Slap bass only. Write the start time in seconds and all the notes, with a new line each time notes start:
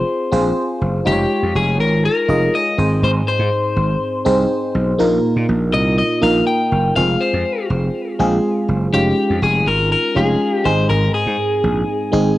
0.32 A#1
0.81 F#1
1.06 F1
1.43 F2
1.55 F1
1.79 G#1
2.28 F1
2.78 G#1
3.02 G#1
3.39 G#2
3.76 G#1
4.26 C2
4.75 B1
5.00 A#1
5.36 A#2
5.49 A#1
5.73 C2
6.22 A#1
6.72 F#1
6.96 F1
7.33 F2
7.70 F1
8.19 A#1
8.68 F#1
8.93 F1
9.30 F2
9.42 F1
9.66 G#1
10.16 F1
10.65 G#1
10.90 G#1
11.26 G#2
11.64 A#1
12.13 G#1